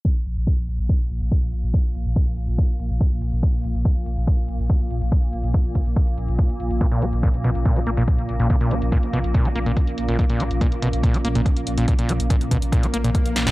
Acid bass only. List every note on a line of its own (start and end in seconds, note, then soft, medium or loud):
6.81 6.87 A#2 medium
6.92 7.03 A#2 medium
7.02 7.06 A#3 medium
7.23 7.29 A#2 loud
7.44 7.50 B2 loud
7.65 7.78 A#2 medium
7.76 7.80 A#3 loud
7.87 7.90 A#3 medium
7.97 8.03 A#2 loud
8.40 8.48 A#2 medium
8.50 8.56 A#2 medium
8.61 8.73 A#2 medium
8.71 8.75 A#3 medium
8.92 8.98 A#2 loud
9.13 9.19 B2 loud
9.34 9.47 A#2 medium
9.45 9.49 A#3 loud
9.56 9.59 A#3 medium
9.66 9.72 A#2 loud
10.09 10.17 A#2 medium
10.19 10.25 A#2 medium
10.30 10.42 A#2 medium
10.40 10.44 A#3 medium
10.61 10.67 A#2 loud
10.82 10.88 B2 loud
11.03 11.16 A#2 medium
11.14 11.18 A#3 loud
11.25 11.28 A#3 medium
11.35 11.41 A#2 loud
11.78 11.86 A#2 medium
11.88 11.94 A#2 medium
11.99 12.11 A#2 medium
12.09 12.13 A#3 medium
12.30 12.36 A#2 loud
12.51 12.57 B2 loud
12.72 12.85 A#2 medium
12.83 12.87 A#3 loud
12.94 12.97 A#3 medium
13.04 13.10 A#2 loud
13.47 13.51 A#2 medium